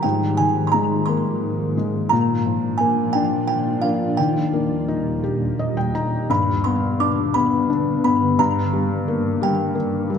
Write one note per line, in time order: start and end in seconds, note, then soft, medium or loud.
0.00 2.09 G#2 medium
0.00 2.08 G#2 medium
0.00 2.08 D#3 medium
0.00 2.10 A#3 medium
0.00 0.39 G5 medium
0.37 1.73 D#3 soft
0.37 0.67 G#5 medium
0.67 0.74 C6 medium
0.72 1.76 G#3 soft
0.72 1.08 A#5 medium
1.06 2.09 A#3 medium
1.06 1.81 C6 medium
1.77 2.11 G#3 soft
2.09 6.25 A#2 medium
2.09 4.14 A#2 medium
2.09 4.16 F3 medium
2.09 4.16 D4 medium
2.09 2.81 A#5 medium
2.46 3.80 F3 soft
2.78 3.83 A#3 medium
2.78 3.14 G#5 medium
3.13 4.15 D4 medium
3.13 3.29 G5 medium
3.48 3.84 G5 medium
3.82 4.18 A#3 soft
3.82 4.18 F5 medium
4.17 6.27 D#2 medium
4.17 6.26 D#3 medium
4.17 6.27 G3 medium
4.17 5.90 G5 medium
4.53 5.91 A#3 soft
4.88 5.93 D#4 soft
5.24 6.26 G4 soft
5.59 5.76 D#5 medium
5.77 5.93 G5 medium
5.95 6.29 D#4 soft
5.95 6.27 A#5 medium
6.29 10.18 G2 medium
6.29 8.35 G2 medium
6.29 8.37 D3 medium
6.29 8.37 B3 medium
6.29 6.66 B5 medium
6.64 7.34 B3 soft
6.64 7.01 C6 medium
7.00 7.68 D4 soft
7.00 7.36 D6 medium
7.34 8.03 B3 medium
7.34 8.00 B5 medium
7.70 8.37 D4 medium
8.04 8.38 B3 soft
8.04 8.40 B5 medium
8.39 10.18 G2 medium
8.39 10.18 D#3 medium
8.39 10.18 A#3 medium
8.39 9.38 A#5 medium
8.73 9.40 G3 soft
9.08 9.74 A#3 medium
9.42 10.08 G3 soft
9.42 10.15 G5 medium
9.75 10.18 A#3 soft
10.10 10.18 G3 soft